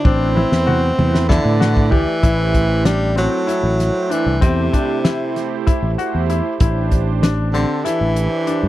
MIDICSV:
0, 0, Header, 1, 6, 480
1, 0, Start_track
1, 0, Tempo, 624350
1, 37, Time_signature, 7, 3, 24, 8
1, 6676, End_track
2, 0, Start_track
2, 0, Title_t, "Analog synth pad"
2, 0, Program_c, 0, 89
2, 35, Note_on_c, 0, 57, 71
2, 36, Note_on_c, 0, 71, 65
2, 37, Note_on_c, 0, 64, 69
2, 39, Note_on_c, 0, 72, 82
2, 606, Note_off_c, 0, 57, 0
2, 607, Note_off_c, 0, 64, 0
2, 607, Note_off_c, 0, 71, 0
2, 608, Note_off_c, 0, 72, 0
2, 754, Note_on_c, 0, 64, 87
2, 755, Note_on_c, 0, 57, 86
2, 757, Note_on_c, 0, 71, 82
2, 758, Note_on_c, 0, 72, 99
2, 945, Note_off_c, 0, 64, 0
2, 946, Note_off_c, 0, 57, 0
2, 947, Note_off_c, 0, 71, 0
2, 947, Note_off_c, 0, 72, 0
2, 998, Note_on_c, 0, 74, 103
2, 999, Note_on_c, 0, 57, 98
2, 999, Note_on_c, 0, 64, 86
2, 1000, Note_on_c, 0, 71, 87
2, 1568, Note_off_c, 0, 57, 0
2, 1568, Note_off_c, 0, 74, 0
2, 1569, Note_off_c, 0, 64, 0
2, 1569, Note_off_c, 0, 71, 0
2, 1714, Note_on_c, 0, 72, 75
2, 1715, Note_on_c, 0, 57, 71
2, 1715, Note_on_c, 0, 64, 62
2, 1715, Note_on_c, 0, 67, 61
2, 2191, Note_off_c, 0, 64, 0
2, 2191, Note_off_c, 0, 67, 0
2, 2191, Note_off_c, 0, 72, 0
2, 2192, Note_off_c, 0, 57, 0
2, 2319, Note_on_c, 0, 69, 70
2, 2319, Note_on_c, 0, 79, 63
2, 2320, Note_on_c, 0, 64, 60
2, 2321, Note_on_c, 0, 57, 61
2, 2794, Note_off_c, 0, 64, 0
2, 2794, Note_off_c, 0, 69, 0
2, 2794, Note_off_c, 0, 79, 0
2, 2795, Note_off_c, 0, 57, 0
2, 2917, Note_on_c, 0, 64, 63
2, 2918, Note_on_c, 0, 57, 64
2, 2918, Note_on_c, 0, 72, 74
2, 2918, Note_on_c, 0, 79, 67
2, 3298, Note_off_c, 0, 57, 0
2, 3298, Note_off_c, 0, 64, 0
2, 3298, Note_off_c, 0, 72, 0
2, 3298, Note_off_c, 0, 79, 0
2, 3398, Note_on_c, 0, 64, 67
2, 3399, Note_on_c, 0, 67, 67
2, 3400, Note_on_c, 0, 72, 83
2, 3401, Note_on_c, 0, 57, 76
2, 3874, Note_off_c, 0, 64, 0
2, 3874, Note_off_c, 0, 67, 0
2, 3875, Note_off_c, 0, 57, 0
2, 3875, Note_off_c, 0, 72, 0
2, 3994, Note_on_c, 0, 57, 88
2, 3994, Note_on_c, 0, 67, 84
2, 3995, Note_on_c, 0, 72, 95
2, 3997, Note_on_c, 0, 64, 86
2, 4472, Note_off_c, 0, 57, 0
2, 4472, Note_off_c, 0, 67, 0
2, 4473, Note_off_c, 0, 64, 0
2, 4473, Note_off_c, 0, 72, 0
2, 4603, Note_on_c, 0, 57, 93
2, 4603, Note_on_c, 0, 64, 90
2, 4604, Note_on_c, 0, 67, 84
2, 4604, Note_on_c, 0, 72, 108
2, 4981, Note_off_c, 0, 57, 0
2, 4981, Note_off_c, 0, 64, 0
2, 4982, Note_off_c, 0, 67, 0
2, 4982, Note_off_c, 0, 72, 0
2, 5077, Note_on_c, 0, 67, 74
2, 5079, Note_on_c, 0, 62, 78
2, 5080, Note_on_c, 0, 72, 98
2, 5553, Note_off_c, 0, 67, 0
2, 5554, Note_off_c, 0, 62, 0
2, 5555, Note_off_c, 0, 72, 0
2, 5678, Note_on_c, 0, 62, 65
2, 5681, Note_on_c, 0, 67, 59
2, 5681, Note_on_c, 0, 69, 78
2, 6153, Note_off_c, 0, 62, 0
2, 6155, Note_off_c, 0, 67, 0
2, 6155, Note_off_c, 0, 69, 0
2, 6275, Note_on_c, 0, 67, 64
2, 6277, Note_on_c, 0, 62, 68
2, 6277, Note_on_c, 0, 72, 74
2, 6656, Note_off_c, 0, 67, 0
2, 6657, Note_off_c, 0, 62, 0
2, 6657, Note_off_c, 0, 72, 0
2, 6676, End_track
3, 0, Start_track
3, 0, Title_t, "Grand piano"
3, 0, Program_c, 1, 0
3, 37, Note_on_c, 1, 62, 82
3, 212, Note_off_c, 1, 62, 0
3, 275, Note_on_c, 1, 64, 72
3, 451, Note_off_c, 1, 64, 0
3, 511, Note_on_c, 1, 66, 74
3, 864, Note_off_c, 1, 66, 0
3, 992, Note_on_c, 1, 64, 88
3, 1169, Note_off_c, 1, 64, 0
3, 1233, Note_on_c, 1, 66, 74
3, 1409, Note_off_c, 1, 66, 0
3, 1470, Note_on_c, 1, 67, 74
3, 1648, Note_off_c, 1, 67, 0
3, 1714, Note_on_c, 1, 64, 77
3, 2066, Note_off_c, 1, 64, 0
3, 2192, Note_on_c, 1, 62, 73
3, 2369, Note_off_c, 1, 62, 0
3, 2429, Note_on_c, 1, 60, 67
3, 2608, Note_off_c, 1, 60, 0
3, 2669, Note_on_c, 1, 64, 74
3, 3023, Note_off_c, 1, 64, 0
3, 3152, Note_on_c, 1, 62, 66
3, 3329, Note_off_c, 1, 62, 0
3, 3392, Note_on_c, 1, 60, 79
3, 3570, Note_off_c, 1, 60, 0
3, 3638, Note_on_c, 1, 62, 69
3, 3813, Note_off_c, 1, 62, 0
3, 3877, Note_on_c, 1, 64, 70
3, 4228, Note_off_c, 1, 64, 0
3, 4356, Note_on_c, 1, 64, 83
3, 4532, Note_off_c, 1, 64, 0
3, 4599, Note_on_c, 1, 66, 75
3, 4774, Note_off_c, 1, 66, 0
3, 4841, Note_on_c, 1, 64, 75
3, 5015, Note_off_c, 1, 64, 0
3, 5081, Note_on_c, 1, 64, 76
3, 5431, Note_off_c, 1, 64, 0
3, 5557, Note_on_c, 1, 62, 74
3, 5733, Note_off_c, 1, 62, 0
3, 5796, Note_on_c, 1, 60, 75
3, 5972, Note_off_c, 1, 60, 0
3, 6033, Note_on_c, 1, 64, 79
3, 6385, Note_off_c, 1, 64, 0
3, 6514, Note_on_c, 1, 62, 67
3, 6676, Note_off_c, 1, 62, 0
3, 6676, End_track
4, 0, Start_track
4, 0, Title_t, "Tenor saxophone"
4, 0, Program_c, 2, 66
4, 37, Note_on_c, 2, 60, 80
4, 984, Note_off_c, 2, 60, 0
4, 989, Note_on_c, 2, 50, 88
4, 1471, Note_on_c, 2, 52, 96
4, 1483, Note_off_c, 2, 50, 0
4, 2195, Note_on_c, 2, 55, 100
4, 2207, Note_off_c, 2, 52, 0
4, 2436, Note_off_c, 2, 55, 0
4, 2440, Note_on_c, 2, 54, 94
4, 3164, Note_on_c, 2, 52, 83
4, 3175, Note_off_c, 2, 54, 0
4, 3397, Note_off_c, 2, 52, 0
4, 3401, Note_on_c, 2, 48, 80
4, 4329, Note_off_c, 2, 48, 0
4, 5792, Note_on_c, 2, 50, 76
4, 6031, Note_on_c, 2, 52, 84
4, 6043, Note_off_c, 2, 50, 0
4, 6676, Note_off_c, 2, 52, 0
4, 6676, End_track
5, 0, Start_track
5, 0, Title_t, "Fingered electric bass"
5, 0, Program_c, 3, 33
5, 37, Note_on_c, 3, 33, 99
5, 335, Note_off_c, 3, 33, 0
5, 401, Note_on_c, 3, 40, 78
5, 697, Note_off_c, 3, 40, 0
5, 761, Note_on_c, 3, 40, 98
5, 1057, Note_off_c, 3, 40, 0
5, 1114, Note_on_c, 3, 45, 89
5, 1474, Note_off_c, 3, 45, 0
5, 1474, Note_on_c, 3, 38, 75
5, 1574, Note_off_c, 3, 38, 0
5, 1717, Note_on_c, 3, 33, 82
5, 2512, Note_off_c, 3, 33, 0
5, 2793, Note_on_c, 3, 33, 73
5, 2994, Note_off_c, 3, 33, 0
5, 3277, Note_on_c, 3, 36, 83
5, 3377, Note_off_c, 3, 36, 0
5, 3398, Note_on_c, 3, 40, 81
5, 3597, Note_off_c, 3, 40, 0
5, 4478, Note_on_c, 3, 33, 74
5, 4578, Note_off_c, 3, 33, 0
5, 4725, Note_on_c, 3, 40, 75
5, 4921, Note_off_c, 3, 40, 0
5, 5078, Note_on_c, 3, 33, 84
5, 5873, Note_off_c, 3, 33, 0
5, 6157, Note_on_c, 3, 33, 75
5, 6356, Note_off_c, 3, 33, 0
5, 6636, Note_on_c, 3, 43, 87
5, 6676, Note_off_c, 3, 43, 0
5, 6676, End_track
6, 0, Start_track
6, 0, Title_t, "Drums"
6, 39, Note_on_c, 9, 36, 112
6, 116, Note_off_c, 9, 36, 0
6, 286, Note_on_c, 9, 48, 69
6, 363, Note_off_c, 9, 48, 0
6, 402, Note_on_c, 9, 38, 57
6, 479, Note_off_c, 9, 38, 0
6, 522, Note_on_c, 9, 47, 75
6, 598, Note_off_c, 9, 47, 0
6, 759, Note_on_c, 9, 47, 78
6, 835, Note_off_c, 9, 47, 0
6, 883, Note_on_c, 9, 38, 73
6, 959, Note_off_c, 9, 38, 0
6, 998, Note_on_c, 9, 36, 104
6, 1002, Note_on_c, 9, 38, 83
6, 1075, Note_off_c, 9, 36, 0
6, 1079, Note_off_c, 9, 38, 0
6, 1240, Note_on_c, 9, 38, 93
6, 1317, Note_off_c, 9, 38, 0
6, 1358, Note_on_c, 9, 36, 80
6, 1435, Note_off_c, 9, 36, 0
6, 1476, Note_on_c, 9, 36, 101
6, 1553, Note_off_c, 9, 36, 0
6, 1717, Note_on_c, 9, 36, 101
6, 1717, Note_on_c, 9, 42, 80
6, 1794, Note_off_c, 9, 36, 0
6, 1794, Note_off_c, 9, 42, 0
6, 1956, Note_on_c, 9, 42, 61
6, 1957, Note_on_c, 9, 36, 74
6, 2033, Note_off_c, 9, 36, 0
6, 2033, Note_off_c, 9, 42, 0
6, 2194, Note_on_c, 9, 38, 99
6, 2194, Note_on_c, 9, 42, 77
6, 2271, Note_off_c, 9, 38, 0
6, 2271, Note_off_c, 9, 42, 0
6, 2440, Note_on_c, 9, 42, 57
6, 2517, Note_off_c, 9, 42, 0
6, 2679, Note_on_c, 9, 42, 75
6, 2756, Note_off_c, 9, 42, 0
6, 2920, Note_on_c, 9, 38, 29
6, 2920, Note_on_c, 9, 42, 55
6, 2997, Note_off_c, 9, 38, 0
6, 2997, Note_off_c, 9, 42, 0
6, 3162, Note_on_c, 9, 42, 59
6, 3239, Note_off_c, 9, 42, 0
6, 3397, Note_on_c, 9, 42, 71
6, 3399, Note_on_c, 9, 36, 106
6, 3474, Note_off_c, 9, 42, 0
6, 3476, Note_off_c, 9, 36, 0
6, 3640, Note_on_c, 9, 36, 69
6, 3642, Note_on_c, 9, 42, 54
6, 3717, Note_off_c, 9, 36, 0
6, 3719, Note_off_c, 9, 42, 0
6, 3881, Note_on_c, 9, 38, 101
6, 3881, Note_on_c, 9, 42, 74
6, 3957, Note_off_c, 9, 38, 0
6, 3957, Note_off_c, 9, 42, 0
6, 4123, Note_on_c, 9, 38, 30
6, 4123, Note_on_c, 9, 42, 55
6, 4200, Note_off_c, 9, 38, 0
6, 4200, Note_off_c, 9, 42, 0
6, 4362, Note_on_c, 9, 36, 96
6, 4362, Note_on_c, 9, 42, 73
6, 4439, Note_off_c, 9, 36, 0
6, 4439, Note_off_c, 9, 42, 0
6, 4604, Note_on_c, 9, 42, 54
6, 4681, Note_off_c, 9, 42, 0
6, 4841, Note_on_c, 9, 42, 59
6, 4918, Note_off_c, 9, 42, 0
6, 5076, Note_on_c, 9, 42, 84
6, 5079, Note_on_c, 9, 36, 111
6, 5153, Note_off_c, 9, 42, 0
6, 5155, Note_off_c, 9, 36, 0
6, 5316, Note_on_c, 9, 42, 65
6, 5319, Note_on_c, 9, 36, 75
6, 5393, Note_off_c, 9, 42, 0
6, 5396, Note_off_c, 9, 36, 0
6, 5559, Note_on_c, 9, 38, 100
6, 5559, Note_on_c, 9, 42, 81
6, 5636, Note_off_c, 9, 38, 0
6, 5636, Note_off_c, 9, 42, 0
6, 5800, Note_on_c, 9, 42, 60
6, 5877, Note_off_c, 9, 42, 0
6, 6039, Note_on_c, 9, 38, 31
6, 6039, Note_on_c, 9, 42, 79
6, 6116, Note_off_c, 9, 38, 0
6, 6116, Note_off_c, 9, 42, 0
6, 6276, Note_on_c, 9, 42, 62
6, 6353, Note_off_c, 9, 42, 0
6, 6512, Note_on_c, 9, 42, 59
6, 6589, Note_off_c, 9, 42, 0
6, 6676, End_track
0, 0, End_of_file